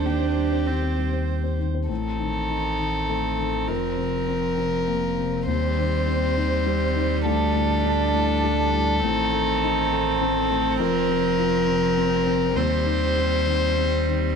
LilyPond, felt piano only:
\new Staff \with { instrumentName = "Felt piano" } { \clef bass \time 3/4 \key c \dorian \tempo 4 = 101 ees,16 <c' c''>16 g16 <c' c''>16 ees16 <c' c''>16 g16 <c' c''>8 <c' c''>16 ees16 <c' c''>16 | a,8 ees8 ees'8 ees8 a8 ees8 | f,8 c8 c'8 c8 bes8 c8 | ees,8 ees8 c'8 ees8 g8 ees8 |
d,8 a,8 d'8 a,8 g8 a,8 | a,8 a8 ees'8 a8 c'8 a8 | f,8 c8 f'8 c8 c'8 c8 | ees,8 ees8 g'8 ees8 c'8 ees8 | }